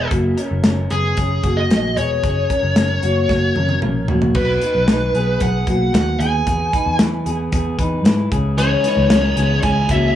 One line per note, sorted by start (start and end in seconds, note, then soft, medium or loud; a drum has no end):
0.00 0.10 B3 medium
0.00 0.11 G#4 medium
0.11 0.33 F#1 medium
0.11 0.37 A#3 medium
0.11 0.37 F#4 medium
0.11 kick loud
0.11 closed hi-hat medium
0.37 0.64 C#4 soft
0.37 0.63 A#4 medium
0.37 closed hi-hat medium
0.51 0.62 F#1 medium
0.64 0.86 F#1 medium
0.64 0.91 C#4 medium
0.64 0.90 A#4 medium
0.64 snare loud
0.64 closed hi-hat medium
0.90 1.13 F#1 medium
0.90 1.18 B3 medium
0.90 1.17 G#4 medium
0.90 1.59 G#4 medium
0.90 closed hi-hat medium
1.17 1.39 F#1 medium
1.17 1.44 C#4 medium
1.17 1.44 G#4 medium
1.17 kick medium
1.17 closed hi-hat medium
1.43 1.65 F#1 medium
1.43 1.94 A#3 medium
1.43 1.94 F#4 medium
1.43 kick medium
1.43 closed hi-hat medium
1.57 1.97 D#5 loud
1.70 1.92 A#1 medium
1.70 snare medium
1.70 closed hi-hat medium
1.97 2.18 E1 medium
1.97 2.24 B3 medium
1.97 2.22 G#4 medium
1.97 3.79 C#5 medium
1.97 closed hi-hat medium
2.23 2.45 F#1 medium
2.23 2.50 C#4 medium
2.23 2.50 G#4 medium
2.23 kick medium
2.23 closed hi-hat medium
2.50 2.76 C#4 soft
2.50 2.76 A#4 medium
2.50 kick medium
2.50 closed hi-hat medium
2.63 2.74 F#1 medium
2.76 2.98 F#1 medium
2.76 3.03 C#4 medium
2.76 3.03 A#4 medium
2.76 snare loud
2.76 closed hi-hat medium
3.03 3.25 F#1 medium
3.03 3.29 A#3 medium
3.03 3.29 F#4 medium
3.03 closed hi-hat medium
3.29 3.51 F#1 medium
3.29 3.56 A#3 medium
3.29 3.56 F#4 medium
3.29 kick medium
3.29 snare soft
3.56 3.78 F#1 medium
3.56 3.83 C#4 medium
3.56 3.82 A#4 medium
3.56 high tom medium
3.69 high tom medium
3.82 4.04 A#1 medium
3.82 4.10 C#4 medium
3.82 4.09 A#4 medium
3.82 mid tom medium
4.08 4.30 A#1 medium
4.08 4.36 A#3 medium
4.08 4.34 F#4 medium
4.08 floor tom medium
4.22 floor tom medium
4.34 4.57 B1 loud
4.34 4.62 B3 medium
4.34 4.62 F#4 medium
4.34 5.44 B4 medium
4.34 kick loud
4.34 crash medium
4.62 4.88 D#4 soft
4.62 4.88 B4 medium
4.62 closed hi-hat medium
4.75 4.86 B1 medium
4.88 5.09 B1 medium
4.88 5.15 D#4 medium
4.88 5.15 B4 medium
4.88 snare loud
4.88 closed hi-hat medium
5.14 5.36 B1 medium
5.14 5.41 B3 medium
5.14 5.40 G#4 medium
5.14 closed hi-hat medium
5.40 5.62 B1 medium
5.40 5.67 B3 medium
5.40 5.68 G#4 medium
5.40 5.93 F#5 medium
5.40 kick medium
5.40 closed hi-hat medium
5.67 5.89 B1 medium
5.67 6.18 A#3 medium
5.67 6.17 F#4 medium
5.67 kick medium
5.67 closed hi-hat medium
5.93 6.15 D#2 medium
5.93 6.20 F#5 loud
5.93 snare loud
5.93 closed hi-hat medium
6.19 6.41 D#2 medium
6.19 6.47 B3 medium
6.19 6.46 G#4 medium
6.19 6.95 G#5 medium
6.19 closed hi-hat medium
6.47 6.68 E2 loud
6.47 6.74 B3 medium
6.47 6.73 G#4 medium
6.47 kick medium
6.47 closed hi-hat medium
6.73 6.99 D#4 medium
6.73 6.98 B4 medium
6.73 kick medium
6.73 closed hi-hat medium
6.86 6.97 E2 medium
6.99 7.21 E2 medium
6.99 7.26 E4 medium
6.99 7.26 B4 medium
6.99 snare loud
6.99 closed hi-hat medium
7.26 7.48 E2 medium
7.26 7.52 B3 medium
7.26 7.52 G#4 medium
7.26 closed hi-hat medium
7.52 7.74 E2 medium
7.52 7.79 B3 medium
7.52 7.79 G#4 medium
7.52 kick medium
7.52 closed hi-hat medium
7.78 8.05 E2 medium
7.78 8.05 D#4 medium
7.78 8.03 B4 medium
7.78 kick medium
7.78 closed hi-hat medium
8.04 8.27 G#2 medium
8.04 8.32 E4 medium
8.04 8.31 B4 medium
8.04 snare loud
8.04 closed hi-hat medium
8.31 8.75 C#2 medium
8.31 8.58 C#4 medium
8.31 8.57 G#4 medium
8.31 kick medium
8.31 closed hi-hat medium
8.58 8.84 C#3 medium
8.58 8.84 E3 medium
8.58 8.84 G#3 medium
8.58 8.83 C#4 medium
8.58 8.85 C#4 medium
8.58 8.84 G#4 medium
8.58 9.59 C#5 medium
8.58 closed hi-hat medium
8.84 9.10 E3 soft
8.84 9.10 G#3 soft
8.84 9.10 C#4 soft
8.84 9.11 D#4 soft
8.84 9.11 B4 medium
8.84 closed hi-hat medium
8.97 9.08 C#2 loud
9.10 9.32 C#2 loud
9.10 9.37 C#3 medium
9.10 9.37 E3 medium
9.10 9.37 G#3 medium
9.10 9.37 C#4 medium
9.10 9.35 C#4 medium
9.10 9.37 A#4 medium
9.10 snare loud
9.10 closed hi-hat medium
9.36 9.58 C#2 medium
9.36 9.63 E3 soft
9.36 9.63 G#3 soft
9.36 9.64 B3 medium
9.36 9.63 C#4 medium
9.36 9.62 G#4 medium
9.36 closed hi-hat medium
9.63 9.85 C#2 medium
9.63 9.89 C#3 medium
9.63 9.90 E3 medium
9.63 9.89 G#3 medium
9.63 9.90 C#4 medium
9.63 9.88 C#4 medium
9.63 9.90 G#4 medium
9.63 9.90 G#5 medium
9.63 kick medium
9.63 closed hi-hat medium
9.89 10.11 C#2 loud
9.89 10.15 E3 soft
9.89 10.15 G#3 soft
9.89 10.15 A#3 medium
9.89 10.15 C#4 medium
9.89 10.15 F#4 medium
9.89 10.15 E5 medium
9.89 kick medium
9.89 closed hi-hat medium